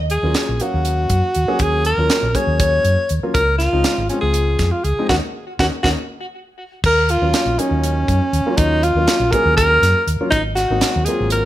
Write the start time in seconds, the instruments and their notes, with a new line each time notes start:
Already playing: fingered electric bass D#2
0.10 alto saxophone G#4, closed hi-hat
0.23 fingered electric bass D#2, grand piano F#3 A#3 C#4 F4
0.34 snare, closed hi-hat
0.49 fingered electric bass A#1
0.60 grand piano F#3 A#3 C#4 F5, alto saxophone F#4, closed hi-hat
0.74 fingered electric bass D#2
0.85 closed hi-hat
1.10 fingered electric bass F#2, kick, closed hi-hat
1.35 fingered electric bass D#2, closed hi-hat
1.48 grand piano F#3 A#3 C#4 G#4, muted fingered electric bass stroke
1.59 fingered electric bass D#2, alto saxophone G#4, kick, closed hi-hat
1.85 alto saxophone A#4, closed hi-hat
1.98 fingered electric bass D#2, grand piano F#3 A#3 C#4 F4
2.10 snare, closed hi-hat
2.23 fingered electric bass A#1
2.35 grand piano F#3 A#3 C#4 G#4, alto saxophone C#5, kick, closed hi-hat
2.47 fingered electric bass D#2
2.60 alto saxophone C#5, kick, closed hi-hat
2.84 fingered electric bass F#2, closed hi-hat
3.09 fingered electric bass D#2, closed hi-hat
3.23 grand piano F#3 A#3 C#4 F4, muted fingered electric bass stroke
3.34 fingered electric bass C#2, alto saxophone A#4, kick, closed hi-hat
3.58 alto saxophone F4, snare, closed hi-hat
3.73 fingered electric bass C#2, grand piano F3 G#3 C4 D#4
3.84 snare, closed hi-hat
3.98 fingered electric bass G#1
4.09 grand piano F3 G#3 C4 F4, alto saxophone C#4, closed hi-hat
4.21 fingered electric bass C#2, alto saxophone G#4
4.34 closed hi-hat
4.59 fingered electric bass F2, kick, snare, closed hi-hat
4.71 alto saxophone F4
4.84 fingered electric bass C#2, alto saxophone G#4, closed hi-hat
4.99 grand piano F3 G#3 C4 D#4
5.09 fingered electric bass D#2, grand piano A#3 C#4 D#4, alto saxophone F#4, kick, snare
5.59 fingered electric bass D#2, grand piano A#3 C#4 D#4, alto saxophone F#4, kick, snare
5.83 fingered electric bass D#2, grand piano A#3 C#4 D#4, alto saxophone F#4, kick, snare
6.84 fingered electric bass D#2, alto saxophone A#4, kick, crash
7.09 alto saxophone F4, closed hi-hat
7.22 fingered electric bass D#2, grand piano F#3 A#3 C#4 F4
7.34 snare, closed hi-hat
7.46 fingered electric bass A#1
7.58 grand piano F#3 A#3 C#4 D#4, alto saxophone C#4, closed hi-hat
7.71 fingered electric bass D#2
7.84 closed hi-hat
8.08 fingered electric bass F#2, kick, closed hi-hat
8.33 fingered electric bass D#2, closed hi-hat
8.46 grand piano F#3 A#3 C#4 F4
8.57 fingered electric bass D#2, alto saxophone D#4, kick, closed hi-hat
8.83 alto saxophone F4, closed hi-hat
8.95 fingered electric bass D#2, grand piano F#3 A#3 C#4 F4
9.08 snare, closed hi-hat
9.20 fingered electric bass A#1
9.32 grand piano F#3 A#3 C#4 G#4, alto saxophone A#4, kick, closed hi-hat
9.46 fingered electric bass D#2
9.57 alto saxophone A#4, kick, closed hi-hat
9.82 fingered electric bass F#2, snare, closed hi-hat
10.07 fingered electric bass D#2, closed hi-hat
10.20 grand piano F#3 A#3 C#4 F4, muted fingered electric bass stroke
10.31 fingered electric bass G#1, alto saxophone D#4, kick, closed hi-hat
10.55 alto saxophone F#4, snare, closed hi-hat
10.70 fingered electric bass G#1, grand piano F#3 A#3 C4 D#4
10.81 snare, closed hi-hat
10.96 fingered electric bass D#2
11.05 grand piano F#3 A#3 C4 F4, alto saxophone G#4, closed hi-hat
11.20 fingered electric bass G#1
11.30 alto saxophone A#4, closed hi-hat